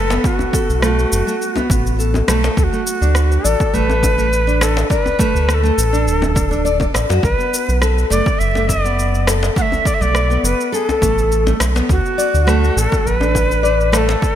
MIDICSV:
0, 0, Header, 1, 6, 480
1, 0, Start_track
1, 0, Key_signature, 2, "minor"
1, 0, Tempo, 582524
1, 198, Time_signature, 4, 2, 24, 8
1, 11826, End_track
2, 0, Start_track
2, 0, Title_t, "Native American-style wooden flute"
2, 0, Program_c, 0, 77
2, 0, Note_on_c, 0, 69, 103
2, 216, Note_on_c, 0, 66, 95
2, 228, Note_off_c, 0, 69, 0
2, 687, Note_off_c, 0, 66, 0
2, 694, Note_on_c, 0, 66, 84
2, 1853, Note_off_c, 0, 66, 0
2, 2130, Note_on_c, 0, 69, 90
2, 2171, Note_on_c, 0, 66, 98
2, 2179, Note_off_c, 0, 69, 0
2, 2842, Note_on_c, 0, 69, 103
2, 2854, Note_off_c, 0, 66, 0
2, 3084, Note_on_c, 0, 71, 117
2, 3097, Note_off_c, 0, 69, 0
2, 3805, Note_on_c, 0, 69, 105
2, 3817, Note_off_c, 0, 71, 0
2, 4037, Note_off_c, 0, 69, 0
2, 4042, Note_on_c, 0, 71, 107
2, 4531, Note_off_c, 0, 71, 0
2, 4531, Note_on_c, 0, 71, 88
2, 4564, Note_on_c, 0, 69, 96
2, 4572, Note_off_c, 0, 71, 0
2, 5724, Note_off_c, 0, 69, 0
2, 5960, Note_on_c, 0, 71, 112
2, 6406, Note_off_c, 0, 71, 0
2, 6680, Note_on_c, 0, 74, 101
2, 6914, Note_on_c, 0, 76, 108
2, 6926, Note_off_c, 0, 74, 0
2, 7156, Note_on_c, 0, 74, 97
2, 7169, Note_off_c, 0, 76, 0
2, 7637, Note_off_c, 0, 74, 0
2, 7893, Note_on_c, 0, 78, 103
2, 7924, Note_on_c, 0, 76, 112
2, 7933, Note_off_c, 0, 78, 0
2, 8130, Note_on_c, 0, 74, 109
2, 8143, Note_off_c, 0, 76, 0
2, 8192, Note_on_c, 0, 76, 89
2, 8204, Note_off_c, 0, 74, 0
2, 8254, Note_on_c, 0, 74, 112
2, 8266, Note_off_c, 0, 76, 0
2, 8609, Note_on_c, 0, 71, 96
2, 8621, Note_off_c, 0, 74, 0
2, 8853, Note_on_c, 0, 68, 87
2, 8865, Note_off_c, 0, 71, 0
2, 8977, Note_off_c, 0, 68, 0
2, 8977, Note_on_c, 0, 69, 87
2, 9565, Note_off_c, 0, 69, 0
2, 9818, Note_on_c, 0, 66, 105
2, 10531, Note_on_c, 0, 69, 103
2, 10544, Note_off_c, 0, 66, 0
2, 10770, Note_on_c, 0, 71, 111
2, 10782, Note_off_c, 0, 69, 0
2, 11490, Note_off_c, 0, 71, 0
2, 11490, Note_on_c, 0, 71, 107
2, 11518, Note_on_c, 0, 69, 116
2, 11526, Note_off_c, 0, 71, 0
2, 11826, Note_off_c, 0, 69, 0
2, 11826, End_track
3, 0, Start_track
3, 0, Title_t, "Nylon-string guitar"
3, 0, Program_c, 1, 24
3, 86, Note_on_c, 1, 59, 74
3, 427, Note_off_c, 1, 59, 0
3, 437, Note_on_c, 1, 69, 81
3, 666, Note_off_c, 1, 69, 0
3, 679, Note_on_c, 1, 57, 97
3, 1034, Note_off_c, 1, 57, 0
3, 1046, Note_on_c, 1, 57, 67
3, 1110, Note_off_c, 1, 57, 0
3, 1283, Note_on_c, 1, 59, 73
3, 1625, Note_off_c, 1, 59, 0
3, 1637, Note_on_c, 1, 69, 79
3, 1866, Note_off_c, 1, 69, 0
3, 1877, Note_on_c, 1, 57, 107
3, 2118, Note_off_c, 1, 57, 0
3, 2248, Note_on_c, 1, 57, 67
3, 2311, Note_off_c, 1, 57, 0
3, 2486, Note_on_c, 1, 62, 77
3, 2827, Note_off_c, 1, 62, 0
3, 2838, Note_on_c, 1, 74, 76
3, 3067, Note_off_c, 1, 74, 0
3, 3078, Note_on_c, 1, 57, 101
3, 3433, Note_off_c, 1, 57, 0
3, 3443, Note_on_c, 1, 57, 75
3, 3508, Note_off_c, 1, 57, 0
3, 3685, Note_on_c, 1, 62, 78
3, 4026, Note_off_c, 1, 62, 0
3, 4036, Note_on_c, 1, 74, 86
3, 4266, Note_off_c, 1, 74, 0
3, 4274, Note_on_c, 1, 57, 111
3, 4632, Note_off_c, 1, 57, 0
3, 4642, Note_on_c, 1, 57, 78
3, 4708, Note_off_c, 1, 57, 0
3, 4884, Note_on_c, 1, 62, 72
3, 5224, Note_off_c, 1, 62, 0
3, 5234, Note_on_c, 1, 62, 74
3, 5351, Note_off_c, 1, 62, 0
3, 5363, Note_on_c, 1, 62, 98
3, 5471, Note_off_c, 1, 62, 0
3, 5478, Note_on_c, 1, 74, 102
3, 5594, Note_off_c, 1, 74, 0
3, 5607, Note_on_c, 1, 74, 80
3, 5713, Note_off_c, 1, 74, 0
3, 5845, Note_on_c, 1, 66, 98
3, 5952, Note_off_c, 1, 66, 0
3, 6085, Note_on_c, 1, 59, 72
3, 6426, Note_off_c, 1, 59, 0
3, 6440, Note_on_c, 1, 69, 84
3, 6668, Note_off_c, 1, 69, 0
3, 6677, Note_on_c, 1, 57, 90
3, 7033, Note_off_c, 1, 57, 0
3, 7045, Note_on_c, 1, 57, 74
3, 7109, Note_off_c, 1, 57, 0
3, 7287, Note_on_c, 1, 59, 77
3, 7627, Note_off_c, 1, 59, 0
3, 7640, Note_on_c, 1, 69, 74
3, 7868, Note_off_c, 1, 69, 0
3, 7880, Note_on_c, 1, 57, 104
3, 8235, Note_off_c, 1, 57, 0
3, 8246, Note_on_c, 1, 57, 73
3, 8310, Note_off_c, 1, 57, 0
3, 8488, Note_on_c, 1, 59, 80
3, 8828, Note_off_c, 1, 59, 0
3, 8836, Note_on_c, 1, 69, 89
3, 9066, Note_off_c, 1, 69, 0
3, 9080, Note_on_c, 1, 57, 102
3, 9435, Note_off_c, 1, 57, 0
3, 9449, Note_on_c, 1, 57, 75
3, 9512, Note_off_c, 1, 57, 0
3, 9684, Note_on_c, 1, 59, 78
3, 9797, Note_off_c, 1, 59, 0
3, 10036, Note_on_c, 1, 74, 77
3, 10266, Note_off_c, 1, 74, 0
3, 10274, Note_on_c, 1, 57, 110
3, 10632, Note_off_c, 1, 57, 0
3, 10644, Note_on_c, 1, 57, 76
3, 10709, Note_off_c, 1, 57, 0
3, 10879, Note_on_c, 1, 62, 76
3, 11223, Note_off_c, 1, 62, 0
3, 11232, Note_on_c, 1, 74, 86
3, 11464, Note_off_c, 1, 74, 0
3, 11473, Note_on_c, 1, 57, 112
3, 11826, Note_off_c, 1, 57, 0
3, 11826, End_track
4, 0, Start_track
4, 0, Title_t, "Analog synth bass"
4, 0, Program_c, 2, 38
4, 0, Note_on_c, 2, 30, 83
4, 152, Note_off_c, 2, 30, 0
4, 572, Note_on_c, 2, 35, 86
4, 871, Note_off_c, 2, 35, 0
4, 923, Note_on_c, 2, 30, 82
4, 1013, Note_off_c, 2, 30, 0
4, 1402, Note_on_c, 2, 33, 106
4, 1830, Note_off_c, 2, 33, 0
4, 1881, Note_on_c, 2, 35, 78
4, 2057, Note_off_c, 2, 35, 0
4, 2121, Note_on_c, 2, 38, 94
4, 2212, Note_off_c, 2, 38, 0
4, 2484, Note_on_c, 2, 38, 89
4, 2787, Note_off_c, 2, 38, 0
4, 2840, Note_on_c, 2, 33, 84
4, 2931, Note_off_c, 2, 33, 0
4, 3077, Note_on_c, 2, 33, 85
4, 3988, Note_off_c, 2, 33, 0
4, 4407, Note_on_c, 2, 38, 91
4, 4708, Note_off_c, 2, 38, 0
4, 4759, Note_on_c, 2, 33, 77
4, 4999, Note_on_c, 2, 26, 92
4, 5011, Note_off_c, 2, 33, 0
4, 5668, Note_off_c, 2, 26, 0
4, 5722, Note_on_c, 2, 33, 79
4, 5812, Note_off_c, 2, 33, 0
4, 5850, Note_on_c, 2, 42, 82
4, 5928, Note_off_c, 2, 42, 0
4, 5960, Note_on_c, 2, 35, 100
4, 6051, Note_off_c, 2, 35, 0
4, 6333, Note_on_c, 2, 35, 88
4, 6631, Note_off_c, 2, 35, 0
4, 6680, Note_on_c, 2, 30, 86
4, 6771, Note_off_c, 2, 30, 0
4, 6923, Note_on_c, 2, 30, 84
4, 7830, Note_off_c, 2, 30, 0
4, 8249, Note_on_c, 2, 35, 88
4, 8549, Note_off_c, 2, 35, 0
4, 8598, Note_on_c, 2, 30, 85
4, 8690, Note_off_c, 2, 30, 0
4, 9080, Note_on_c, 2, 33, 106
4, 9509, Note_off_c, 2, 33, 0
4, 9562, Note_on_c, 2, 35, 76
4, 9737, Note_off_c, 2, 35, 0
4, 9800, Note_on_c, 2, 38, 99
4, 9892, Note_off_c, 2, 38, 0
4, 10169, Note_on_c, 2, 38, 88
4, 10469, Note_off_c, 2, 38, 0
4, 10517, Note_on_c, 2, 33, 83
4, 10610, Note_off_c, 2, 33, 0
4, 10758, Note_on_c, 2, 33, 81
4, 11668, Note_off_c, 2, 33, 0
4, 11826, End_track
5, 0, Start_track
5, 0, Title_t, "Djembe"
5, 85, Note_on_c, 9, 62, 72
5, 167, Note_off_c, 9, 62, 0
5, 322, Note_on_c, 9, 64, 89
5, 405, Note_off_c, 9, 64, 0
5, 1282, Note_on_c, 9, 63, 75
5, 1290, Note_on_c, 9, 64, 97
5, 1364, Note_off_c, 9, 63, 0
5, 1372, Note_off_c, 9, 64, 0
5, 1765, Note_on_c, 9, 64, 94
5, 1774, Note_on_c, 9, 62, 56
5, 1847, Note_off_c, 9, 64, 0
5, 1856, Note_off_c, 9, 62, 0
5, 1881, Note_on_c, 9, 62, 67
5, 1963, Note_off_c, 9, 62, 0
5, 2012, Note_on_c, 9, 62, 71
5, 2094, Note_off_c, 9, 62, 0
5, 2486, Note_on_c, 9, 63, 38
5, 2568, Note_off_c, 9, 63, 0
5, 3210, Note_on_c, 9, 63, 77
5, 3292, Note_off_c, 9, 63, 0
5, 3323, Note_on_c, 9, 63, 76
5, 3329, Note_on_c, 9, 64, 101
5, 3405, Note_off_c, 9, 63, 0
5, 3411, Note_off_c, 9, 64, 0
5, 3800, Note_on_c, 9, 62, 67
5, 3883, Note_off_c, 9, 62, 0
5, 3929, Note_on_c, 9, 62, 68
5, 4011, Note_off_c, 9, 62, 0
5, 4168, Note_on_c, 9, 64, 88
5, 4251, Note_off_c, 9, 64, 0
5, 5125, Note_on_c, 9, 63, 77
5, 5129, Note_on_c, 9, 64, 101
5, 5207, Note_off_c, 9, 63, 0
5, 5211, Note_off_c, 9, 64, 0
5, 5602, Note_on_c, 9, 64, 85
5, 5610, Note_on_c, 9, 62, 42
5, 5610, Note_on_c, 9, 63, 64
5, 5684, Note_off_c, 9, 64, 0
5, 5692, Note_off_c, 9, 63, 0
5, 5693, Note_off_c, 9, 62, 0
5, 5722, Note_on_c, 9, 62, 66
5, 5804, Note_off_c, 9, 62, 0
5, 5851, Note_on_c, 9, 62, 61
5, 5933, Note_off_c, 9, 62, 0
5, 6333, Note_on_c, 9, 63, 32
5, 6415, Note_off_c, 9, 63, 0
5, 7048, Note_on_c, 9, 63, 70
5, 7131, Note_off_c, 9, 63, 0
5, 7161, Note_on_c, 9, 63, 77
5, 7161, Note_on_c, 9, 64, 89
5, 7243, Note_off_c, 9, 64, 0
5, 7244, Note_off_c, 9, 63, 0
5, 7644, Note_on_c, 9, 62, 70
5, 7726, Note_off_c, 9, 62, 0
5, 7768, Note_on_c, 9, 62, 65
5, 7850, Note_off_c, 9, 62, 0
5, 8011, Note_on_c, 9, 64, 86
5, 8093, Note_off_c, 9, 64, 0
5, 8972, Note_on_c, 9, 64, 77
5, 8975, Note_on_c, 9, 63, 82
5, 9055, Note_off_c, 9, 64, 0
5, 9057, Note_off_c, 9, 63, 0
5, 9449, Note_on_c, 9, 62, 58
5, 9451, Note_on_c, 9, 64, 82
5, 9531, Note_off_c, 9, 62, 0
5, 9534, Note_off_c, 9, 64, 0
5, 9560, Note_on_c, 9, 62, 64
5, 9643, Note_off_c, 9, 62, 0
5, 9690, Note_on_c, 9, 62, 65
5, 9773, Note_off_c, 9, 62, 0
5, 10171, Note_on_c, 9, 63, 29
5, 10253, Note_off_c, 9, 63, 0
5, 10884, Note_on_c, 9, 63, 72
5, 10966, Note_off_c, 9, 63, 0
5, 11000, Note_on_c, 9, 63, 77
5, 11002, Note_on_c, 9, 64, 91
5, 11082, Note_off_c, 9, 63, 0
5, 11084, Note_off_c, 9, 64, 0
5, 11482, Note_on_c, 9, 62, 69
5, 11564, Note_off_c, 9, 62, 0
5, 11608, Note_on_c, 9, 62, 72
5, 11690, Note_off_c, 9, 62, 0
5, 11826, End_track
6, 0, Start_track
6, 0, Title_t, "Drums"
6, 92, Note_on_c, 9, 82, 31
6, 175, Note_off_c, 9, 82, 0
6, 199, Note_on_c, 9, 36, 123
6, 206, Note_on_c, 9, 82, 46
6, 282, Note_off_c, 9, 36, 0
6, 288, Note_off_c, 9, 82, 0
6, 334, Note_on_c, 9, 82, 23
6, 417, Note_off_c, 9, 82, 0
6, 439, Note_on_c, 9, 36, 106
6, 447, Note_on_c, 9, 82, 82
6, 522, Note_off_c, 9, 36, 0
6, 530, Note_off_c, 9, 82, 0
6, 577, Note_on_c, 9, 82, 35
6, 660, Note_off_c, 9, 82, 0
6, 679, Note_on_c, 9, 37, 79
6, 687, Note_on_c, 9, 82, 45
6, 761, Note_off_c, 9, 37, 0
6, 770, Note_off_c, 9, 82, 0
6, 816, Note_on_c, 9, 82, 23
6, 899, Note_off_c, 9, 82, 0
6, 927, Note_on_c, 9, 82, 90
6, 1009, Note_off_c, 9, 82, 0
6, 1057, Note_on_c, 9, 82, 34
6, 1139, Note_off_c, 9, 82, 0
6, 1169, Note_on_c, 9, 82, 42
6, 1252, Note_off_c, 9, 82, 0
6, 1297, Note_on_c, 9, 82, 23
6, 1379, Note_off_c, 9, 82, 0
6, 1399, Note_on_c, 9, 36, 113
6, 1409, Note_on_c, 9, 82, 80
6, 1482, Note_off_c, 9, 36, 0
6, 1491, Note_off_c, 9, 82, 0
6, 1537, Note_on_c, 9, 82, 35
6, 1620, Note_off_c, 9, 82, 0
6, 1648, Note_on_c, 9, 82, 43
6, 1730, Note_off_c, 9, 82, 0
6, 1776, Note_on_c, 9, 82, 24
6, 1858, Note_off_c, 9, 82, 0
6, 1880, Note_on_c, 9, 37, 81
6, 1888, Note_on_c, 9, 82, 78
6, 1962, Note_off_c, 9, 37, 0
6, 1971, Note_off_c, 9, 82, 0
6, 2014, Note_on_c, 9, 82, 34
6, 2097, Note_off_c, 9, 82, 0
6, 2119, Note_on_c, 9, 36, 121
6, 2124, Note_on_c, 9, 82, 47
6, 2202, Note_off_c, 9, 36, 0
6, 2207, Note_off_c, 9, 82, 0
6, 2253, Note_on_c, 9, 82, 23
6, 2336, Note_off_c, 9, 82, 0
6, 2364, Note_on_c, 9, 82, 83
6, 2446, Note_off_c, 9, 82, 0
6, 2492, Note_on_c, 9, 82, 34
6, 2575, Note_off_c, 9, 82, 0
6, 2594, Note_on_c, 9, 37, 73
6, 2602, Note_on_c, 9, 82, 45
6, 2676, Note_off_c, 9, 37, 0
6, 2685, Note_off_c, 9, 82, 0
6, 2733, Note_on_c, 9, 82, 24
6, 2816, Note_off_c, 9, 82, 0
6, 2844, Note_on_c, 9, 82, 84
6, 2926, Note_off_c, 9, 82, 0
6, 2968, Note_on_c, 9, 36, 110
6, 2973, Note_on_c, 9, 82, 36
6, 3050, Note_off_c, 9, 36, 0
6, 3056, Note_off_c, 9, 82, 0
6, 3086, Note_on_c, 9, 82, 47
6, 3168, Note_off_c, 9, 82, 0
6, 3218, Note_on_c, 9, 82, 22
6, 3300, Note_off_c, 9, 82, 0
6, 3320, Note_on_c, 9, 36, 64
6, 3326, Note_on_c, 9, 82, 87
6, 3402, Note_off_c, 9, 36, 0
6, 3409, Note_off_c, 9, 82, 0
6, 3454, Note_on_c, 9, 82, 35
6, 3536, Note_off_c, 9, 82, 0
6, 3568, Note_on_c, 9, 82, 46
6, 3650, Note_off_c, 9, 82, 0
6, 3697, Note_on_c, 9, 82, 23
6, 3779, Note_off_c, 9, 82, 0
6, 3802, Note_on_c, 9, 37, 76
6, 3810, Note_on_c, 9, 82, 75
6, 3884, Note_off_c, 9, 37, 0
6, 3892, Note_off_c, 9, 82, 0
6, 3939, Note_on_c, 9, 82, 33
6, 4022, Note_off_c, 9, 82, 0
6, 4039, Note_on_c, 9, 36, 119
6, 4049, Note_on_c, 9, 82, 44
6, 4122, Note_off_c, 9, 36, 0
6, 4131, Note_off_c, 9, 82, 0
6, 4177, Note_on_c, 9, 82, 22
6, 4260, Note_off_c, 9, 82, 0
6, 4280, Note_on_c, 9, 36, 110
6, 4288, Note_on_c, 9, 82, 88
6, 4363, Note_off_c, 9, 36, 0
6, 4370, Note_off_c, 9, 82, 0
6, 4418, Note_on_c, 9, 82, 34
6, 4501, Note_off_c, 9, 82, 0
6, 4520, Note_on_c, 9, 37, 75
6, 4529, Note_on_c, 9, 82, 42
6, 4603, Note_off_c, 9, 37, 0
6, 4611, Note_off_c, 9, 82, 0
6, 4658, Note_on_c, 9, 82, 23
6, 4740, Note_off_c, 9, 82, 0
6, 4767, Note_on_c, 9, 82, 81
6, 4849, Note_off_c, 9, 82, 0
6, 4897, Note_on_c, 9, 82, 34
6, 4979, Note_off_c, 9, 82, 0
6, 5008, Note_on_c, 9, 82, 45
6, 5091, Note_off_c, 9, 82, 0
6, 5137, Note_on_c, 9, 82, 23
6, 5220, Note_off_c, 9, 82, 0
6, 5240, Note_on_c, 9, 36, 108
6, 5246, Note_on_c, 9, 82, 77
6, 5323, Note_off_c, 9, 36, 0
6, 5329, Note_off_c, 9, 82, 0
6, 5376, Note_on_c, 9, 82, 34
6, 5458, Note_off_c, 9, 82, 0
6, 5489, Note_on_c, 9, 82, 46
6, 5571, Note_off_c, 9, 82, 0
6, 5607, Note_on_c, 9, 36, 65
6, 5619, Note_on_c, 9, 82, 22
6, 5690, Note_off_c, 9, 36, 0
6, 5701, Note_off_c, 9, 82, 0
6, 5724, Note_on_c, 9, 37, 71
6, 5732, Note_on_c, 9, 82, 77
6, 5806, Note_off_c, 9, 37, 0
6, 5814, Note_off_c, 9, 82, 0
6, 5861, Note_on_c, 9, 82, 35
6, 5943, Note_off_c, 9, 82, 0
6, 5959, Note_on_c, 9, 36, 115
6, 5971, Note_on_c, 9, 82, 41
6, 6041, Note_off_c, 9, 36, 0
6, 6053, Note_off_c, 9, 82, 0
6, 6099, Note_on_c, 9, 82, 21
6, 6182, Note_off_c, 9, 82, 0
6, 6212, Note_on_c, 9, 82, 83
6, 6294, Note_off_c, 9, 82, 0
6, 6338, Note_on_c, 9, 82, 34
6, 6420, Note_off_c, 9, 82, 0
6, 6441, Note_on_c, 9, 37, 72
6, 6449, Note_on_c, 9, 82, 42
6, 6523, Note_off_c, 9, 37, 0
6, 6531, Note_off_c, 9, 82, 0
6, 6578, Note_on_c, 9, 82, 21
6, 6661, Note_off_c, 9, 82, 0
6, 6690, Note_on_c, 9, 82, 83
6, 6772, Note_off_c, 9, 82, 0
6, 6808, Note_on_c, 9, 36, 111
6, 6817, Note_on_c, 9, 82, 33
6, 6890, Note_off_c, 9, 36, 0
6, 6900, Note_off_c, 9, 82, 0
6, 6928, Note_on_c, 9, 82, 41
6, 7010, Note_off_c, 9, 82, 0
6, 7058, Note_on_c, 9, 82, 22
6, 7141, Note_off_c, 9, 82, 0
6, 7160, Note_on_c, 9, 36, 60
6, 7167, Note_on_c, 9, 82, 76
6, 7242, Note_off_c, 9, 36, 0
6, 7250, Note_off_c, 9, 82, 0
6, 7297, Note_on_c, 9, 82, 32
6, 7380, Note_off_c, 9, 82, 0
6, 7409, Note_on_c, 9, 82, 46
6, 7492, Note_off_c, 9, 82, 0
6, 7536, Note_on_c, 9, 82, 23
6, 7619, Note_off_c, 9, 82, 0
6, 7642, Note_on_c, 9, 37, 76
6, 7650, Note_on_c, 9, 82, 72
6, 7724, Note_off_c, 9, 37, 0
6, 7732, Note_off_c, 9, 82, 0
6, 7779, Note_on_c, 9, 82, 34
6, 7861, Note_off_c, 9, 82, 0
6, 7880, Note_on_c, 9, 36, 108
6, 7889, Note_on_c, 9, 82, 44
6, 7963, Note_off_c, 9, 36, 0
6, 7971, Note_off_c, 9, 82, 0
6, 8020, Note_on_c, 9, 82, 21
6, 8103, Note_off_c, 9, 82, 0
6, 8120, Note_on_c, 9, 36, 98
6, 8129, Note_on_c, 9, 82, 74
6, 8202, Note_off_c, 9, 36, 0
6, 8212, Note_off_c, 9, 82, 0
6, 8257, Note_on_c, 9, 82, 35
6, 8339, Note_off_c, 9, 82, 0
6, 8361, Note_on_c, 9, 37, 73
6, 8369, Note_on_c, 9, 82, 44
6, 8443, Note_off_c, 9, 37, 0
6, 8452, Note_off_c, 9, 82, 0
6, 8497, Note_on_c, 9, 82, 22
6, 8580, Note_off_c, 9, 82, 0
6, 8609, Note_on_c, 9, 82, 83
6, 8691, Note_off_c, 9, 82, 0
6, 8740, Note_on_c, 9, 82, 32
6, 8822, Note_off_c, 9, 82, 0
6, 8851, Note_on_c, 9, 82, 45
6, 8933, Note_off_c, 9, 82, 0
6, 8977, Note_on_c, 9, 82, 22
6, 9060, Note_off_c, 9, 82, 0
6, 9080, Note_on_c, 9, 36, 102
6, 9088, Note_on_c, 9, 82, 78
6, 9162, Note_off_c, 9, 36, 0
6, 9171, Note_off_c, 9, 82, 0
6, 9216, Note_on_c, 9, 82, 31
6, 9298, Note_off_c, 9, 82, 0
6, 9327, Note_on_c, 9, 82, 44
6, 9410, Note_off_c, 9, 82, 0
6, 9455, Note_on_c, 9, 82, 23
6, 9538, Note_off_c, 9, 82, 0
6, 9559, Note_on_c, 9, 37, 76
6, 9568, Note_on_c, 9, 82, 70
6, 9642, Note_off_c, 9, 37, 0
6, 9650, Note_off_c, 9, 82, 0
6, 9697, Note_on_c, 9, 82, 31
6, 9779, Note_off_c, 9, 82, 0
6, 9800, Note_on_c, 9, 36, 114
6, 9808, Note_on_c, 9, 82, 42
6, 9883, Note_off_c, 9, 36, 0
6, 9890, Note_off_c, 9, 82, 0
6, 9936, Note_on_c, 9, 82, 21
6, 10018, Note_off_c, 9, 82, 0
6, 10046, Note_on_c, 9, 82, 72
6, 10129, Note_off_c, 9, 82, 0
6, 10175, Note_on_c, 9, 82, 33
6, 10257, Note_off_c, 9, 82, 0
6, 10280, Note_on_c, 9, 37, 70
6, 10289, Note_on_c, 9, 82, 41
6, 10363, Note_off_c, 9, 37, 0
6, 10371, Note_off_c, 9, 82, 0
6, 10418, Note_on_c, 9, 82, 21
6, 10500, Note_off_c, 9, 82, 0
6, 10529, Note_on_c, 9, 82, 79
6, 10611, Note_off_c, 9, 82, 0
6, 10648, Note_on_c, 9, 36, 109
6, 10659, Note_on_c, 9, 82, 33
6, 10731, Note_off_c, 9, 36, 0
6, 10741, Note_off_c, 9, 82, 0
6, 10770, Note_on_c, 9, 82, 42
6, 10852, Note_off_c, 9, 82, 0
6, 10899, Note_on_c, 9, 82, 22
6, 10981, Note_off_c, 9, 82, 0
6, 11000, Note_on_c, 9, 36, 60
6, 11008, Note_on_c, 9, 82, 74
6, 11083, Note_off_c, 9, 36, 0
6, 11090, Note_off_c, 9, 82, 0
6, 11136, Note_on_c, 9, 82, 32
6, 11218, Note_off_c, 9, 82, 0
6, 11248, Note_on_c, 9, 82, 42
6, 11330, Note_off_c, 9, 82, 0
6, 11376, Note_on_c, 9, 82, 21
6, 11458, Note_off_c, 9, 82, 0
6, 11480, Note_on_c, 9, 37, 74
6, 11488, Note_on_c, 9, 82, 78
6, 11562, Note_off_c, 9, 37, 0
6, 11571, Note_off_c, 9, 82, 0
6, 11618, Note_on_c, 9, 82, 32
6, 11700, Note_off_c, 9, 82, 0
6, 11720, Note_on_c, 9, 36, 108
6, 11731, Note_on_c, 9, 82, 44
6, 11802, Note_off_c, 9, 36, 0
6, 11813, Note_off_c, 9, 82, 0
6, 11826, End_track
0, 0, End_of_file